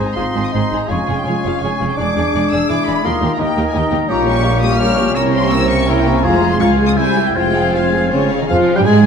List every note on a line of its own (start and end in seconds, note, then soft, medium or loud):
0.00 1.94 G#3 soft
0.00 0.85 C4 soft
0.00 0.13 D#4 soft
0.00 0.14 C6 soft
0.08 0.16 A#5 medium
0.14 0.24 G#1 soft
0.14 0.24 G#2 soft
0.14 0.23 G#3 soft
0.14 0.23 D#4 soft
0.14 0.52 D#4 soft
0.14 0.54 F4 medium
0.14 0.24 G#4 soft
0.14 0.24 C5 soft
0.14 0.42 C6 medium
0.14 0.52 C6 soft
0.34 0.43 G#1 soft
0.34 0.42 G#2 soft
0.34 0.42 G#3 soft
0.34 0.42 D#4 soft
0.34 0.42 G#4 soft
0.34 0.42 C5 soft
0.44 0.53 D#6 medium
0.52 0.61 G#1 soft
0.52 0.60 G#2 soft
0.52 0.61 G#3 soft
0.52 0.90 D#4 soft
0.52 0.61 D#4 soft
0.52 0.61 G#4 soft
0.52 0.61 C5 soft
0.52 0.79 C6 medium
0.52 0.89 C6 soft
0.72 0.79 G#1 soft
0.72 0.79 G#2 soft
0.72 0.79 G#3 soft
0.72 0.79 D#4 soft
0.72 0.80 G#4 soft
0.72 0.80 C5 soft
0.79 0.88 A#5 soft
0.88 0.96 F1 soft
0.88 0.97 F2 medium
0.88 0.97 G#3 soft
0.88 1.99 C#4 soft
0.88 1.61 F4 medium
0.88 0.97 F4 soft
0.88 1.25 G#4 soft
0.88 0.97 G#4 soft
0.88 0.96 C#5 soft
0.88 1.16 G#5 medium
0.88 1.25 C#6 soft
1.07 1.15 F1 soft
1.07 1.15 F2 soft
1.07 1.15 G#3 soft
1.07 1.16 F4 soft
1.07 1.15 G#4 soft
1.07 1.15 C#5 soft
1.16 1.25 G5 medium
1.25 1.33 F1 soft
1.25 1.34 F2 soft
1.25 1.34 G#3 soft
1.25 1.34 F4 soft
1.25 1.61 G#4 soft
1.25 1.34 G#4 soft
1.25 1.34 C#5 soft
1.25 1.43 G#5 medium
1.25 1.61 C#6 soft
1.44 1.51 F1 soft
1.44 1.51 F2 soft
1.44 1.52 G#3 soft
1.44 1.52 F4 soft
1.44 1.52 G#4 soft
1.44 1.53 C#5 soft
1.44 1.62 F5 medium
1.62 1.69 F1 soft
1.62 1.69 F2 soft
1.62 1.70 G#3 soft
1.62 1.97 C#4 soft
1.62 1.70 F4 soft
1.62 1.97 G#4 soft
1.62 1.71 G#4 soft
1.62 1.71 C#5 soft
1.62 1.89 G#5 medium
1.62 1.98 C#6 soft
1.80 1.88 F1 soft
1.80 1.88 F2 soft
1.80 1.87 G#3 soft
1.80 1.87 F4 soft
1.80 1.88 G#4 soft
1.80 1.88 C#5 soft
1.89 1.98 G5 soft
1.97 2.05 E1 soft
1.97 2.06 E2 medium
1.97 2.05 G#3 soft
1.97 3.04 G#3 soft
1.97 2.67 D4 medium
1.97 2.05 D4 soft
1.97 3.06 D4 soft
1.97 2.68 G#4 soft
1.97 2.06 G#4 soft
1.97 2.06 D5 soft
1.97 2.50 D6 medium
1.97 2.68 D6 soft
2.16 2.23 E1 soft
2.16 2.24 E2 soft
2.16 2.23 G#3 soft
2.16 2.23 D4 soft
2.16 2.24 G#4 soft
2.16 2.24 D5 soft
2.33 2.41 E1 medium
2.33 2.41 E2 medium
2.33 2.41 G#3 soft
2.33 2.40 D4 soft
2.33 2.42 G#4 soft
2.33 2.42 D5 soft
2.51 2.59 E1 soft
2.51 2.59 E2 soft
2.51 2.59 G#3 soft
2.51 2.59 D4 soft
2.51 2.59 G#4 soft
2.51 2.59 D5 soft
2.51 2.69 E6 medium
2.68 2.77 E1 soft
2.68 2.77 E2 soft
2.68 2.75 G#3 soft
2.68 2.75 D4 soft
2.68 3.04 E4 medium
2.68 3.07 G#4 soft
2.68 2.77 G#4 soft
2.68 2.76 D5 soft
2.68 3.04 D6 medium
2.68 2.87 D6 medium
2.87 2.94 E1 soft
2.87 2.95 E2 medium
2.87 2.94 G#3 soft
2.87 2.94 D4 soft
2.87 2.94 G#4 soft
2.87 2.94 D5 soft
2.87 3.04 B5 medium
3.04 3.12 D#2 medium
3.04 3.12 D#2 soft
3.04 4.09 A#3 soft
3.04 3.12 A#3 soft
3.04 4.07 D#4 soft
3.04 3.12 D#4 medium
3.04 3.38 F4 medium
3.04 3.12 G4 soft
3.04 3.11 A#4 soft
3.04 3.40 A#4 medium
3.04 3.32 C6 medium
3.04 3.38 D#6 soft
3.21 3.29 D#2 soft
3.21 3.29 D#2 medium
3.21 3.28 A#3 soft
3.21 3.28 D#4 soft
3.21 3.30 G4 soft
3.21 3.29 A#4 soft
3.34 3.37 A#5 medium
3.39 3.46 D#2 medium
3.39 3.47 D#2 medium
3.39 3.46 A#3 soft
3.39 3.46 D#4 soft
3.39 4.10 D#4 medium
3.39 3.47 G4 soft
3.39 3.46 A#4 soft
3.39 3.74 A#4 medium
3.39 3.65 G5 medium
3.39 3.74 D#6 soft
3.56 3.64 D#2 medium
3.56 3.64 A#3 soft
3.56 3.64 D#4 soft
3.56 3.64 G4 soft
3.56 3.64 A#4 medium
3.67 3.75 G#5 medium
3.73 3.81 D#2 soft
3.73 3.82 D#2 medium
3.73 3.81 A#3 soft
3.73 3.81 D#4 soft
3.73 3.81 G4 medium
3.73 3.81 A#4 soft
3.73 4.09 A#4 medium
3.73 3.93 G5 medium
3.73 4.09 D#6 medium
3.91 3.98 D#2 medium
3.91 3.99 D#2 soft
3.91 3.99 A#3 soft
3.91 3.99 D#4 soft
3.91 3.98 G4 soft
3.91 3.98 A#4 soft
4.09 5.13 A#1 medium
4.09 5.12 A#2 medium
4.09 4.26 G3 soft
4.09 5.14 G3 medium
4.09 4.46 C#4 medium
4.09 5.16 F4 medium
4.09 4.26 F4 medium
4.09 4.79 G4 medium
4.09 4.25 A#4 soft
4.09 4.26 C#5 soft
4.09 4.26 A#5 medium
4.09 4.80 C#6 medium
4.27 4.45 A#3 soft
4.27 4.45 C#4 soft
4.27 4.45 G4 medium
4.27 4.44 A#4 medium
4.27 4.62 C#6 medium
4.44 4.63 G3 soft
4.44 4.80 F4 medium
4.44 4.63 F4 medium
4.44 4.61 A#4 medium
4.44 4.63 C#5 medium
4.61 4.80 A#3 soft
4.61 4.81 C#4 soft
4.61 4.81 G4 medium
4.61 4.78 A#4 medium
4.61 4.80 D#6 medium
4.79 4.97 G3 soft
4.79 5.53 C#4 medium
4.79 4.97 F4 medium
4.79 5.17 G4 medium
4.79 4.96 A#4 medium
4.79 4.97 C#5 medium
4.79 5.16 C#6 medium
4.79 5.05 F6 medium
4.97 5.17 A#3 medium
4.97 5.17 C#4 soft
4.97 5.16 G4 soft
4.97 5.14 A#4 medium
5.07 5.10 F6 medium
5.15 6.25 C2 medium
5.15 6.24 C3 medium
5.15 6.25 A#3 medium
5.15 5.34 C4 medium
5.15 6.23 C#4 medium
5.15 5.33 E4 medium
5.15 5.33 A#4 medium
5.15 5.86 A#4 medium
5.15 5.33 C#5 medium
5.15 5.57 C#6 medium
5.15 5.23 E6 medium
5.33 5.52 A#3 medium
5.33 5.52 C#4 medium
5.33 5.52 G4 medium
5.33 5.52 C5 medium
5.33 5.51 C6 medium
5.50 5.70 C4 medium
5.50 5.88 C4 medium
5.50 5.70 E4 medium
5.50 5.70 A#4 medium
5.50 5.70 C#5 medium
5.50 5.69 E6 medium
5.69 5.88 A#3 medium
5.69 5.88 C#4 medium
5.69 5.88 G4 medium
5.69 5.88 C5 medium
5.69 5.88 C#6 medium
5.86 6.05 C4 medium
5.86 6.05 E4 medium
5.86 6.23 E4 medium
5.86 6.04 A#4 medium
5.86 6.25 A#4 medium
5.86 6.04 C#5 medium
5.86 6.15 G5 medium
5.86 6.24 C#6 medium
6.04 6.24 A#3 medium
6.04 6.24 C#4 medium
6.04 6.24 G4 medium
6.04 6.21 C5 medium
6.15 6.24 G#5 medium
6.23 6.61 F1 medium
6.23 6.61 F2 medium
6.23 6.42 F3 medium
6.23 6.59 G#3 medium
6.23 6.60 F4 medium
6.23 6.41 F4 medium
6.23 6.59 F4 medium
6.23 6.41 G#4 medium
6.23 6.62 G#4 medium
6.23 6.40 C5 medium
6.23 6.52 A#5 medium
6.23 6.61 C6 medium
6.41 6.61 G#3 medium
6.41 6.60 F4 medium
6.41 6.60 G#4 medium
6.41 6.61 G#4 medium
6.52 6.56 C6 medium
6.60 6.98 C#2 medium
6.60 6.99 C#2 medium
6.60 6.78 F3 medium
6.60 6.97 G#3 medium
6.60 6.99 F4 medium
6.60 6.97 F4 medium
6.60 6.78 F4 medium
6.60 6.99 F4 medium
6.60 6.78 G#4 medium
6.60 6.78 F5 medium
6.60 6.68 C#6 medium
6.60 6.98 G#6 medium
6.79 6.98 G#3 soft
6.79 6.98 F4 medium
6.79 6.98 G#4 soft
6.79 6.98 G#5 medium
6.87 6.92 D#6 medium
6.97 7.37 C2 medium
6.97 7.16 G3 soft
6.97 7.37 G3 medium
6.97 7.35 E4 medium
6.97 7.38 E4 medium
6.97 7.16 E4 medium
6.97 7.36 E4 medium
6.97 7.16 E4 medium
6.97 7.16 C5 medium
6.97 7.26 G#5 medium
6.97 7.35 G6 medium
7.15 7.36 C4 soft
7.15 7.36 G4 soft
7.15 7.36 E5 soft
7.27 7.34 G5 soft
7.35 8.31 F1 medium
7.35 8.12 F2 medium
7.35 7.74 G#3 medium
7.35 7.55 G#3 medium
7.35 8.30 C4 medium
7.35 7.54 F4 medium
7.35 7.74 F4 medium
7.35 7.55 F4 soft
7.35 7.54 C5 medium
7.35 7.74 G5 medium
7.35 7.74 G#6 medium
7.54 7.75 C4 soft
7.54 7.74 G#4 medium
7.54 7.75 G#4 soft
7.54 7.74 F5 soft
7.74 8.13 G#3 medium
7.74 7.95 G#3 soft
7.74 7.94 F4 medium
7.74 8.31 F4 medium
7.74 8.13 F4 medium
7.74 7.95 F4 soft
7.74 7.94 C5 medium
7.74 8.13 F5 medium
7.74 8.13 G#6 soft
7.92 8.14 C4 soft
7.92 8.12 G#4 medium
7.92 8.14 G#4 soft
7.92 8.12 F5 soft
8.10 8.40 C#3 medium
8.10 8.21 C#3 medium
8.10 8.31 G#3 soft
8.10 8.39 C#4 medium
8.10 8.30 F4 soft
8.10 8.31 F4 soft
8.10 8.30 C5 soft
8.10 8.39 C#5 medium
8.10 8.40 C#5 medium
8.30 8.51 C4 soft
8.30 8.50 G#4 soft
8.30 8.51 G#4 soft
8.30 8.50 F5 soft
8.40 8.46 D#3 soft
8.40 8.51 D#3 medium
8.40 8.50 D#4 soft
8.40 8.51 D#5 medium
8.40 8.47 D#5 soft
8.48 8.59 F2 medium
8.48 8.78 F3 medium
8.48 8.76 F3 medium
8.48 8.78 F3 medium
8.48 8.77 F3 medium
8.48 8.63 F3 medium
8.48 8.76 F4 medium
8.48 8.56 F5 medium
8.48 8.78 F5 medium
8.53 8.78 F5 medium
8.76 8.87 G2 medium
8.76 8.86 G3 medium
8.76 8.87 G3 medium
8.76 8.86 G4 medium
8.76 8.85 G5 medium
8.76 8.88 G5 medium
8.76 8.87 G5 medium
8.84 9.06 G#2 medium
8.84 9.06 G#3 medium
8.84 8.99 G#3 medium
8.84 9.06 G#4 medium
8.84 9.06 G#5 medium
8.89 9.06 G#3 medium